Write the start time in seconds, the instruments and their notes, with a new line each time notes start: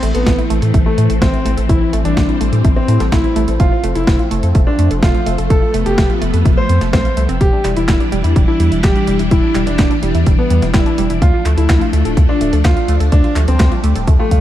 Already playing: string machine E3 A3 C4
0.03 analog synth bass A1, synth arpeggio sound A3, closed hi-hat
0.14 analog synth bass A1, grand piano B3, synth arpeggio sound A4, closed hi-hat
0.26 analog synth bass A1, synth arpeggio sound A3, kick, snare, closed hi-hat
0.38 synth arpeggio sound E4, closed hi-hat
0.50 analog synth bass A1, synth arpeggio sound A3, closed hi-hat
0.62 analog synth bass A2, synth arpeggio sound A4, closed hi-hat
0.74 analog synth bass A1, synth arpeggio sound A3, kick, closed hi-hat
0.86 grand piano A3, synth arpeggio sound E4
0.98 analog synth bass A2, synth arpeggio sound A3, closed hi-hat
1.10 analog synth bass A1, synth arpeggio sound A4, closed hi-hat
1.22 analog synth bass A1, synth arpeggio sound A3, grand piano C4, kick, snare, closed hi-hat
1.33 synth arpeggio sound E4, closed hi-hat
1.45 analog synth bass A1, synth arpeggio sound A3, closed hi-hat
1.57 analog synth bass A1, synth arpeggio sound A4, closed hi-hat
1.69 analog synth bass A1, string machine G3, synth arpeggio sound A3, grand piano E4, kick, closed hi-hat
1.81 synth arpeggio sound E4
1.93 analog synth bass A1, synth arpeggio sound A3, closed hi-hat
2.05 analog synth bass A1, grand piano D4, synth arpeggio sound A4, closed hi-hat
2.17 analog synth bass A1, synth arpeggio sound A3, kick, snare, closed hi-hat
2.29 synth arpeggio sound E4, closed hi-hat
2.41 analog synth bass A1, synth arpeggio sound A3, closed hi-hat
2.52 analog synth bass A2, synth arpeggio sound A4, closed hi-hat
2.64 analog synth bass A1, synth arpeggio sound A3, kick, closed hi-hat
2.76 grand piano C4, synth arpeggio sound E4
2.88 analog synth bass A2, synth arpeggio sound A3, closed hi-hat
3.00 analog synth bass A1, synth arpeggio sound A4, snare, closed hi-hat
3.12 analog synth bass A1, synth arpeggio sound A3, grand piano E4, kick, snare, closed hi-hat
3.24 synth arpeggio sound E4, closed hi-hat
3.36 analog synth bass A1, synth arpeggio sound A3, closed hi-hat
3.48 analog synth bass A1, synth arpeggio sound A4, closed hi-hat
3.60 analog synth bass F1, string machine F3 A3, synth arpeggio sound A3, grand piano F4, kick, closed hi-hat
3.72 synth arpeggio sound F4
3.83 analog synth bass F1, synth arpeggio sound A3, closed hi-hat
3.95 analog synth bass F1, grand piano E4, synth arpeggio sound A4, closed hi-hat
4.07 analog synth bass F1, synth arpeggio sound A3, kick, snare, closed hi-hat
4.19 synth arpeggio sound F4, closed hi-hat
4.31 analog synth bass F1, synth arpeggio sound A3, closed hi-hat
4.43 analog synth bass F2, synth arpeggio sound A4, closed hi-hat
4.55 analog synth bass F1, synth arpeggio sound A3, kick, closed hi-hat
4.67 grand piano D4, synth arpeggio sound F4
4.79 analog synth bass F2, synth arpeggio sound A3, closed hi-hat
4.91 analog synth bass F1, synth arpeggio sound A4, closed hi-hat
5.03 analog synth bass F1, synth arpeggio sound A3, grand piano F4, kick, snare, closed hi-hat
5.15 synth arpeggio sound F4, closed hi-hat
5.26 analog synth bass F1, synth arpeggio sound A3, closed hi-hat
5.38 analog synth bass F1, synth arpeggio sound A4, closed hi-hat
5.50 analog synth bass F1, synth arpeggio sound A3, string machine B3, grand piano A4, kick, closed hi-hat
5.62 synth arpeggio sound F4
5.74 analog synth bass F1, synth arpeggio sound A3, closed hi-hat
5.86 analog synth bass F1, grand piano G4, synth arpeggio sound A4, closed hi-hat
5.98 analog synth bass F1, synth arpeggio sound A3, kick, snare, closed hi-hat
6.10 synth arpeggio sound F4, closed hi-hat
6.22 analog synth bass F1, synth arpeggio sound A3, closed hi-hat
6.34 analog synth bass F2, synth arpeggio sound A4, closed hi-hat
6.45 analog synth bass F1, synth arpeggio sound A3, kick, closed hi-hat
6.57 synth arpeggio sound F4, grand piano C5
6.69 analog synth bass F2, synth arpeggio sound C4, closed hi-hat
6.81 analog synth bass F1, synth arpeggio sound A5, snare, closed hi-hat
6.93 analog synth bass C2, synth arpeggio sound C4, grand piano C5, kick, snare, closed hi-hat
7.05 synth arpeggio sound F5, closed hi-hat
7.17 analog synth bass C2, synth arpeggio sound A3, closed hi-hat
7.29 analog synth bass F1, synth arpeggio sound C4, closed hi-hat
7.41 analog synth bass E1, string machine E3 G3 D4, synth arpeggio sound G3, grand piano G4, kick, closed hi-hat
7.53 synth arpeggio sound D4
7.65 analog synth bass E1, synth arpeggio sound G3, clap, closed hi-hat
7.76 analog synth bass E1, synth arpeggio sound E4, grand piano E4, closed hi-hat
7.88 analog synth bass E1, synth arpeggio sound G3, kick, snare, clap, closed hi-hat
8.00 synth arpeggio sound D4, closed hi-hat
8.12 analog synth bass E1, synth arpeggio sound G3, closed hi-hat
8.24 analog synth bass E2, synth arpeggio sound E4, closed hi-hat
8.36 analog synth bass E1, synth arpeggio sound G3, kick, closed hi-hat
8.48 synth arpeggio sound D4, grand piano E4
8.60 analog synth bass E2, synth arpeggio sound G3, closed hi-hat
8.72 analog synth bass E1, synth arpeggio sound E4, closed hi-hat
8.84 analog synth bass E1, synth arpeggio sound G3, grand piano G4, kick, snare, clap, closed hi-hat
8.96 synth arpeggio sound D4, closed hi-hat
9.07 analog synth bass E1, synth arpeggio sound G3, closed hi-hat
9.19 analog synth bass E1, synth arpeggio sound E4, closed hi-hat
9.31 analog synth bass E1, synth arpeggio sound G3, grand piano E4, kick, closed hi-hat
9.43 synth arpeggio sound D4
9.55 analog synth bass E1, synth arpeggio sound G3, clap, closed hi-hat
9.67 analog synth bass E1, grand piano D4, synth arpeggio sound E4, closed hi-hat
9.79 analog synth bass E1, synth arpeggio sound G3, kick, snare, clap, closed hi-hat
9.91 synth arpeggio sound D4, closed hi-hat
10.03 analog synth bass E1, synth arpeggio sound G3, closed hi-hat
10.15 analog synth bass E2, synth arpeggio sound E4, closed hi-hat
10.26 analog synth bass E1, synth arpeggio sound G3, kick, closed hi-hat
10.38 grand piano B3, synth arpeggio sound D4
10.50 analog synth bass E2, synth arpeggio sound G3, closed hi-hat
10.62 analog synth bass E1, synth arpeggio sound E4, snare, closed hi-hat
10.74 analog synth bass E1, synth arpeggio sound G3, grand piano E4, kick, snare, clap, closed hi-hat
10.86 synth arpeggio sound D4, closed hi-hat
10.98 analog synth bass E1, synth arpeggio sound G3, closed hi-hat
11.10 analog synth bass E1, synth arpeggio sound E4, closed hi-hat
11.22 analog synth bass D2, string machine F3 A3 D4, synth arpeggio sound A3, grand piano F4, kick, closed hi-hat
11.34 synth arpeggio sound F4
11.45 analog synth bass D2, synth arpeggio sound A3, clap, closed hi-hat
11.57 analog synth bass D2, grand piano E4, synth arpeggio sound A4, closed hi-hat
11.69 analog synth bass D2, synth arpeggio sound A3, kick, snare, clap, closed hi-hat
11.81 synth arpeggio sound F4, closed hi-hat
11.93 analog synth bass D2, synth arpeggio sound A3, closed hi-hat
12.05 analog synth bass D1, synth arpeggio sound A4, closed hi-hat
12.17 analog synth bass D2, synth arpeggio sound A3, kick, closed hi-hat
12.29 grand piano D4, synth arpeggio sound F4
12.41 analog synth bass D1, synth arpeggio sound A3, closed hi-hat
12.53 analog synth bass D2, synth arpeggio sound A4, closed hi-hat
12.65 analog synth bass D2, synth arpeggio sound A3, grand piano F4, kick, snare, clap, closed hi-hat
12.77 synth arpeggio sound F4, closed hi-hat
12.88 analog synth bass D2, synth arpeggio sound A3, closed hi-hat
13.00 analog synth bass D2, synth arpeggio sound A4, closed hi-hat
13.12 analog synth bass D2, string machine G3, synth arpeggio sound A3, grand piano D4, kick, closed hi-hat
13.24 synth arpeggio sound F4, closed hi-hat
13.36 analog synth bass D2, synth arpeggio sound A3, clap, closed hi-hat
13.48 analog synth bass D2, grand piano C4, synth arpeggio sound A4, closed hi-hat
13.60 analog synth bass D2, synth arpeggio sound A3, kick, snare, clap, closed hi-hat
13.72 synth arpeggio sound F4, closed hi-hat
13.84 analog synth bass D2, synth arpeggio sound A3, closed hi-hat
13.96 analog synth bass D1, synth arpeggio sound A4, closed hi-hat
14.07 analog synth bass D2, synth arpeggio sound A3, kick, closed hi-hat
14.19 grand piano A3, synth arpeggio sound F4
14.31 analog synth bass D2, synth arpeggio sound F5, kick, closed hi-hat